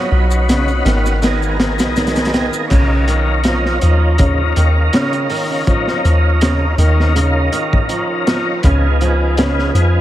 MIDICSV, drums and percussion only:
0, 0, Header, 1, 2, 480
1, 0, Start_track
1, 0, Tempo, 740741
1, 1753, Time_signature, 4, 2, 24, 8
1, 6486, End_track
2, 0, Start_track
2, 0, Title_t, "Drums"
2, 200, Note_on_c, 9, 82, 69
2, 265, Note_off_c, 9, 82, 0
2, 319, Note_on_c, 9, 42, 93
2, 319, Note_on_c, 9, 82, 55
2, 322, Note_on_c, 9, 38, 121
2, 384, Note_off_c, 9, 42, 0
2, 384, Note_off_c, 9, 82, 0
2, 387, Note_off_c, 9, 38, 0
2, 441, Note_on_c, 9, 82, 40
2, 506, Note_off_c, 9, 82, 0
2, 556, Note_on_c, 9, 42, 81
2, 563, Note_on_c, 9, 38, 85
2, 621, Note_off_c, 9, 42, 0
2, 628, Note_off_c, 9, 38, 0
2, 686, Note_on_c, 9, 82, 68
2, 687, Note_on_c, 9, 38, 31
2, 750, Note_off_c, 9, 82, 0
2, 752, Note_off_c, 9, 38, 0
2, 792, Note_on_c, 9, 82, 57
2, 796, Note_on_c, 9, 42, 78
2, 803, Note_on_c, 9, 38, 100
2, 857, Note_off_c, 9, 82, 0
2, 861, Note_off_c, 9, 42, 0
2, 868, Note_off_c, 9, 38, 0
2, 923, Note_on_c, 9, 82, 36
2, 988, Note_off_c, 9, 82, 0
2, 1034, Note_on_c, 9, 38, 111
2, 1035, Note_on_c, 9, 42, 71
2, 1099, Note_off_c, 9, 38, 0
2, 1100, Note_off_c, 9, 42, 0
2, 1159, Note_on_c, 9, 82, 72
2, 1164, Note_on_c, 9, 42, 83
2, 1167, Note_on_c, 9, 38, 110
2, 1224, Note_off_c, 9, 82, 0
2, 1229, Note_off_c, 9, 42, 0
2, 1231, Note_off_c, 9, 38, 0
2, 1272, Note_on_c, 9, 82, 57
2, 1274, Note_on_c, 9, 42, 67
2, 1277, Note_on_c, 9, 38, 79
2, 1337, Note_off_c, 9, 82, 0
2, 1338, Note_off_c, 9, 42, 0
2, 1340, Note_on_c, 9, 42, 65
2, 1341, Note_off_c, 9, 38, 0
2, 1344, Note_on_c, 9, 38, 87
2, 1397, Note_on_c, 9, 82, 43
2, 1399, Note_off_c, 9, 42, 0
2, 1399, Note_on_c, 9, 42, 70
2, 1406, Note_off_c, 9, 38, 0
2, 1406, Note_on_c, 9, 38, 82
2, 1457, Note_off_c, 9, 42, 0
2, 1457, Note_on_c, 9, 42, 61
2, 1461, Note_off_c, 9, 82, 0
2, 1470, Note_off_c, 9, 38, 0
2, 1470, Note_on_c, 9, 38, 85
2, 1514, Note_off_c, 9, 42, 0
2, 1514, Note_on_c, 9, 42, 61
2, 1518, Note_off_c, 9, 38, 0
2, 1518, Note_on_c, 9, 38, 116
2, 1579, Note_off_c, 9, 42, 0
2, 1583, Note_off_c, 9, 38, 0
2, 1642, Note_on_c, 9, 82, 68
2, 1707, Note_off_c, 9, 82, 0
2, 1749, Note_on_c, 9, 49, 87
2, 1756, Note_on_c, 9, 36, 108
2, 1756, Note_on_c, 9, 42, 85
2, 1814, Note_off_c, 9, 49, 0
2, 1821, Note_off_c, 9, 36, 0
2, 1821, Note_off_c, 9, 42, 0
2, 1993, Note_on_c, 9, 42, 72
2, 2058, Note_off_c, 9, 42, 0
2, 2226, Note_on_c, 9, 42, 84
2, 2235, Note_on_c, 9, 38, 107
2, 2291, Note_off_c, 9, 42, 0
2, 2300, Note_off_c, 9, 38, 0
2, 2368, Note_on_c, 9, 38, 41
2, 2433, Note_off_c, 9, 38, 0
2, 2471, Note_on_c, 9, 42, 68
2, 2536, Note_off_c, 9, 42, 0
2, 2710, Note_on_c, 9, 42, 84
2, 2718, Note_on_c, 9, 36, 112
2, 2775, Note_off_c, 9, 42, 0
2, 2783, Note_off_c, 9, 36, 0
2, 2956, Note_on_c, 9, 42, 76
2, 3021, Note_off_c, 9, 42, 0
2, 3194, Note_on_c, 9, 42, 83
2, 3202, Note_on_c, 9, 38, 113
2, 3259, Note_off_c, 9, 42, 0
2, 3266, Note_off_c, 9, 38, 0
2, 3322, Note_on_c, 9, 42, 43
2, 3387, Note_off_c, 9, 42, 0
2, 3432, Note_on_c, 9, 46, 75
2, 3497, Note_off_c, 9, 46, 0
2, 3676, Note_on_c, 9, 36, 101
2, 3676, Note_on_c, 9, 42, 85
2, 3741, Note_off_c, 9, 36, 0
2, 3741, Note_off_c, 9, 42, 0
2, 3807, Note_on_c, 9, 38, 47
2, 3872, Note_off_c, 9, 38, 0
2, 3920, Note_on_c, 9, 42, 71
2, 3985, Note_off_c, 9, 42, 0
2, 4155, Note_on_c, 9, 42, 95
2, 4163, Note_on_c, 9, 38, 118
2, 4220, Note_off_c, 9, 42, 0
2, 4228, Note_off_c, 9, 38, 0
2, 4395, Note_on_c, 9, 42, 63
2, 4460, Note_off_c, 9, 42, 0
2, 4535, Note_on_c, 9, 38, 42
2, 4600, Note_off_c, 9, 38, 0
2, 4640, Note_on_c, 9, 42, 91
2, 4705, Note_off_c, 9, 42, 0
2, 4875, Note_on_c, 9, 42, 69
2, 4940, Note_off_c, 9, 42, 0
2, 5009, Note_on_c, 9, 36, 104
2, 5074, Note_off_c, 9, 36, 0
2, 5112, Note_on_c, 9, 42, 79
2, 5177, Note_off_c, 9, 42, 0
2, 5358, Note_on_c, 9, 42, 65
2, 5363, Note_on_c, 9, 38, 112
2, 5423, Note_off_c, 9, 42, 0
2, 5427, Note_off_c, 9, 38, 0
2, 5592, Note_on_c, 9, 42, 90
2, 5598, Note_on_c, 9, 36, 111
2, 5657, Note_off_c, 9, 42, 0
2, 5663, Note_off_c, 9, 36, 0
2, 5837, Note_on_c, 9, 42, 71
2, 5902, Note_off_c, 9, 42, 0
2, 6074, Note_on_c, 9, 42, 84
2, 6083, Note_on_c, 9, 38, 107
2, 6139, Note_off_c, 9, 42, 0
2, 6148, Note_off_c, 9, 38, 0
2, 6212, Note_on_c, 9, 38, 36
2, 6276, Note_off_c, 9, 38, 0
2, 6319, Note_on_c, 9, 42, 64
2, 6383, Note_off_c, 9, 42, 0
2, 6486, End_track
0, 0, End_of_file